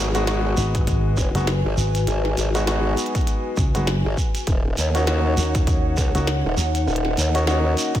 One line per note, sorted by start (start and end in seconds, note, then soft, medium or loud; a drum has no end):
0.00 0.55 G#1 loud
0.00 4.43 F#4 medium
0.00 4.43 B4 medium
0.00 4.43 G#5 medium
0.15 0.22 G#3 medium
0.15 0.22 B3 medium
0.15 0.22 D#4 medium
0.15 0.22 F#4 loud
0.15 closed hi-hat medium
0.15 shekere medium
0.27 1.31 G#3 loud
0.27 1.31 B3 medium
0.27 1.31 D#4 medium
0.27 1.31 F#4 loud
0.27 snare loud
0.27 closed hi-hat medium
0.27 shekere soft
0.57 1.15 G#1 loud
0.57 closed hi-hat soft
0.57 shekere medium
0.75 kick loud
0.75 closed hi-hat medium
0.75 shekere medium
0.81 cross-stick soft
0.87 kick loud
0.87 closed hi-hat medium
0.87 shekere soft
1.17 1.32 F#1 loud
1.17 kick medium
1.17 shekere medium
1.35 1.62 F#1 medium
1.35 1.46 G#3 medium
1.35 1.46 B3 medium
1.35 1.46 D#4 medium
1.35 1.46 F#4 loud
1.35 cross-stick medium
1.35 closed hi-hat medium
1.35 shekere soft
1.47 snare loud
1.47 closed hi-hat medium
1.47 shekere soft
1.65 1.75 G#1 loud
1.77 2.05 G#1 loud
1.77 shekere medium
1.95 closed hi-hat medium
1.95 shekere soft
2.07 2.35 G#1 loud
2.07 closed hi-hat medium
2.07 shekere soft
2.25 snare soft
2.37 2.95 G#1 loud
2.37 closed hi-hat soft
2.37 shekere medium
2.55 2.62 G#3 medium
2.55 2.62 B3 medium
2.55 2.62 D#4 medium
2.55 2.62 F#4 loud
2.55 closed hi-hat medium
2.55 shekere medium
2.67 3.71 G#3 loud
2.67 3.71 B3 medium
2.67 3.71 D#4 medium
2.67 3.71 F#4 loud
2.67 snare loud
2.67 closed hi-hat medium
2.67 shekere soft
2.97 closed hi-hat soft
2.97 shekere loud
3.06 closed hi-hat soft
3.15 kick loud
3.15 cross-stick soft
3.15 closed hi-hat medium
3.15 shekere medium
3.21 closed hi-hat soft
3.27 closed hi-hat medium
3.27 shekere soft
3.57 3.72 C#2 loud
3.57 kick loud
3.57 shekere loud
3.75 4.02 F#1 loud
3.75 3.86 G#3 medium
3.75 3.86 B3 medium
3.75 3.86 D#4 medium
3.75 3.86 F#4 medium
3.75 closed hi-hat medium
3.75 shekere medium
3.87 snare loud
3.87 closed hi-hat medium
3.87 shekere soft
4.05 4.15 G#1 loud
4.17 kick medium
4.17 shekere medium
4.35 closed hi-hat medium
4.35 shekere medium
4.47 4.75 D#1 loud
4.47 8.00 D#4 medium
4.47 6.85 C#5 medium
4.47 8.00 F#5 medium
4.47 kick loud
4.47 closed hi-hat medium
4.47 shekere soft
4.77 5.35 D#2 loud
4.77 closed hi-hat soft
4.77 shekere loud
4.95 5.02 A#3 loud
4.95 5.02 C#4 medium
4.95 5.02 D#4 medium
4.95 5.02 F#4 loud
4.95 closed hi-hat medium
4.95 shekere medium
5.07 6.11 A#3 loud
5.07 6.11 C#4 medium
5.07 6.11 D#4 medium
5.07 6.11 F#4 loud
5.07 snare loud
5.07 closed hi-hat medium
5.07 shekere soft
5.37 5.95 D#2 loud
5.37 closed hi-hat soft
5.37 shekere loud
5.55 kick loud
5.55 cross-stick soft
5.55 closed hi-hat medium
5.55 shekere medium
5.67 kick loud
5.67 closed hi-hat medium
5.67 shekere soft
5.97 6.12 C#2 loud
5.97 kick medium
5.97 shekere loud
6.15 6.42 C#2 loud
6.15 6.26 A#3 medium
6.15 6.26 C#4 medium
6.15 6.26 D#4 medium
6.15 6.26 F#4 loud
6.15 cross-stick medium
6.15 closed hi-hat medium
6.15 shekere medium
6.27 snare loud
6.27 closed hi-hat medium
6.27 shekere soft
6.45 6.55 D#1 loud
6.57 6.85 D#2 loud
6.57 shekere loud
6.75 closed hi-hat medium
6.75 shekere medium
6.87 7.15 D#1 loud
6.87 8.00 D#5 medium
6.87 shekere soft
6.96 closed hi-hat medium
7.05 snare soft
7.17 7.75 D#2 loud
7.17 closed hi-hat soft
7.17 shekere loud
7.35 7.42 A#3 loud
7.35 7.42 C#4 medium
7.35 7.42 D#4 medium
7.35 7.42 F#4 loud
7.35 closed hi-hat medium
7.35 shekere medium
7.47 8.00 A#3 loud
7.47 8.00 C#4 medium
7.47 8.00 D#4 medium
7.47 8.00 F#4 loud
7.47 snare loud
7.47 shekere soft
7.77 closed hi-hat soft
7.77 shekere medium
7.95 kick loud
7.95 cross-stick soft
7.95 closed hi-hat medium
7.95 shekere medium